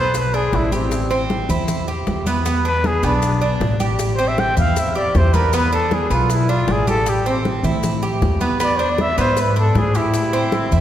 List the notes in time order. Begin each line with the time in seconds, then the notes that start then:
Already playing: B1 B3 C5
0.14 high bongo, high conga, maracas
0.18 B4
0.33 D4 G#4, high bongo, high conga, maracas
0.52 A1 E4, high bongo, low bongo, high conga, maracas
0.72 C4 G4, high conga, maracas
0.91 high bongo, high conga, maracas
1.10 C4, high conga, maracas
1.30 high bongo, high conga, maracas
1.49 E2 E4, high conga, low conga, maracas
1.68 high bongo, high conga, low conga, maracas
1.88 G4, high conga, maracas
2.07 E2, high bongo, low bongo, high conga, maracas
2.26 B3, high conga, maracas
2.45 B3, high bongo, high conga, maracas
2.65 D4 B4, high bongo, high conga, maracas
2.84 G#4, high bongo, high conga, maracas
3.03 B1 B3 D4, high bongo, high conga, maracas
3.22 high bongo, high conga, maracas
3.41 D4, high bongo, high conga, maracas
3.61 A1, high bongo, low bongo, high conga, maracas
3.80 G4, high conga, maracas
3.99 high bongo, high conga, maracas
4.16 C4 C5, high conga, maracas
4.28 E5
4.38 G5, high bongo, high conga, maracas
4.57 E2 E4 F5, high conga, low conga, maracas
4.76 E5, high bongo, maracas
4.95 G4 D5, high conga, maracas
5.15 E2 C5, high bongo, low bongo, high conga, maracas
5.34 B3 A#4, high conga, maracas
5.53 B3 B4, high bongo, high conga, maracas
5.72 D4 A4, high bongo, high conga, maracas
5.91 G#4, high bongo, high conga, maracas
6.10 B1 B3 F4, high bongo, high conga, maracas
6.30 E4, high bongo, high conga, maracas
6.49 D4 F4, high bongo, high conga, maracas
6.67 A1 G#4, high bongo, low bongo, high conga, maracas
6.87 G4 A4, high conga, maracas
7.06 G4, high bongo, high conga, maracas
7.26 C4, high conga, maracas
7.45 high bongo, high conga, maracas
7.63 A2 E4, high conga, low conga, maracas
7.83 high bongo, high conga, low conga, maracas
8.02 G4, high conga, maracas
8.22 E2, high bongo, low bongo, high conga, maracas
8.41 B3, high conga, maracas
8.60 B3 D5, high bongo, high conga, maracas
8.77 D4 C5, high bongo, high conga, maracas
8.89 D5
8.98 E5, high bongo, high conga, maracas
9.18 G#2 B3 C5, high bongo, high conga, maracas
9.37 B4, high bongo, high conga, maracas
9.56 D4 A4, high bongo, high conga, maracas
9.75 A2 G#4, high bongo, low bongo, high conga, maracas
9.95 E4 G4, maracas
10.14 high bongo, high conga, maracas
10.33 C4, high conga, maracas
10.52 high bongo, high conga, maracas
10.71 E2 E4, high conga, low conga, maracas